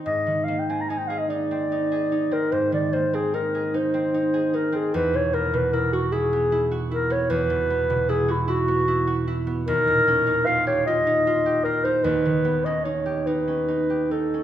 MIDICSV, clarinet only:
0, 0, Header, 1, 2, 480
1, 0, Start_track
1, 0, Tempo, 819672
1, 32, Time_signature, 12, 3, 24, 8
1, 2432, Tempo, 789474
1, 7232, Tempo, 826446
1, 8192, Tempo, 870827
1, 8596, End_track
2, 0, Start_track
2, 0, Title_t, "Clarinet"
2, 0, Program_c, 0, 71
2, 34, Note_on_c, 0, 75, 62
2, 260, Note_on_c, 0, 77, 53
2, 268, Note_off_c, 0, 75, 0
2, 346, Note_on_c, 0, 79, 49
2, 354, Note_off_c, 0, 77, 0
2, 412, Note_on_c, 0, 80, 45
2, 420, Note_off_c, 0, 79, 0
2, 473, Note_on_c, 0, 82, 44
2, 481, Note_off_c, 0, 80, 0
2, 520, Note_on_c, 0, 80, 50
2, 529, Note_off_c, 0, 82, 0
2, 574, Note_on_c, 0, 79, 44
2, 583, Note_off_c, 0, 80, 0
2, 630, Note_on_c, 0, 77, 49
2, 638, Note_off_c, 0, 79, 0
2, 693, Note_on_c, 0, 75, 49
2, 702, Note_off_c, 0, 77, 0
2, 758, Note_on_c, 0, 74, 67
2, 767, Note_off_c, 0, 75, 0
2, 1365, Note_on_c, 0, 70, 63
2, 1373, Note_off_c, 0, 74, 0
2, 1477, Note_on_c, 0, 72, 70
2, 1485, Note_off_c, 0, 70, 0
2, 1596, Note_off_c, 0, 72, 0
2, 1604, Note_on_c, 0, 74, 63
2, 1719, Note_on_c, 0, 72, 61
2, 1728, Note_off_c, 0, 74, 0
2, 1844, Note_on_c, 0, 68, 60
2, 1853, Note_off_c, 0, 72, 0
2, 1959, Note_on_c, 0, 70, 53
2, 1968, Note_off_c, 0, 68, 0
2, 2198, Note_on_c, 0, 72, 65
2, 2207, Note_off_c, 0, 70, 0
2, 2673, Note_on_c, 0, 70, 61
2, 2682, Note_off_c, 0, 72, 0
2, 2801, Note_on_c, 0, 68, 65
2, 2810, Note_off_c, 0, 70, 0
2, 2915, Note_on_c, 0, 71, 78
2, 2924, Note_off_c, 0, 68, 0
2, 3043, Note_on_c, 0, 73, 65
2, 3052, Note_off_c, 0, 71, 0
2, 3153, Note_on_c, 0, 70, 70
2, 3162, Note_off_c, 0, 73, 0
2, 3285, Note_on_c, 0, 71, 63
2, 3295, Note_off_c, 0, 70, 0
2, 3393, Note_on_c, 0, 70, 70
2, 3402, Note_off_c, 0, 71, 0
2, 3513, Note_on_c, 0, 66, 63
2, 3522, Note_off_c, 0, 70, 0
2, 3628, Note_on_c, 0, 68, 74
2, 3637, Note_off_c, 0, 66, 0
2, 4010, Note_off_c, 0, 68, 0
2, 4114, Note_on_c, 0, 70, 72
2, 4235, Note_on_c, 0, 73, 70
2, 4244, Note_off_c, 0, 70, 0
2, 4344, Note_on_c, 0, 71, 84
2, 4353, Note_off_c, 0, 73, 0
2, 4828, Note_on_c, 0, 68, 70
2, 4837, Note_off_c, 0, 71, 0
2, 4960, Note_on_c, 0, 64, 67
2, 4969, Note_off_c, 0, 68, 0
2, 5072, Note_on_c, 0, 66, 82
2, 5081, Note_off_c, 0, 64, 0
2, 5623, Note_off_c, 0, 66, 0
2, 5787, Note_on_c, 0, 70, 89
2, 6265, Note_on_c, 0, 77, 78
2, 6274, Note_off_c, 0, 70, 0
2, 6388, Note_off_c, 0, 77, 0
2, 6395, Note_on_c, 0, 73, 74
2, 6508, Note_off_c, 0, 73, 0
2, 6511, Note_on_c, 0, 75, 79
2, 6985, Note_on_c, 0, 70, 73
2, 6994, Note_off_c, 0, 75, 0
2, 7109, Note_on_c, 0, 72, 76
2, 7118, Note_off_c, 0, 70, 0
2, 7224, Note_on_c, 0, 71, 77
2, 7233, Note_off_c, 0, 72, 0
2, 7580, Note_on_c, 0, 75, 62
2, 7588, Note_off_c, 0, 71, 0
2, 7694, Note_on_c, 0, 73, 57
2, 7703, Note_off_c, 0, 75, 0
2, 7937, Note_on_c, 0, 71, 68
2, 7946, Note_off_c, 0, 73, 0
2, 8419, Note_on_c, 0, 69, 55
2, 8428, Note_off_c, 0, 71, 0
2, 8596, Note_off_c, 0, 69, 0
2, 8596, End_track
0, 0, End_of_file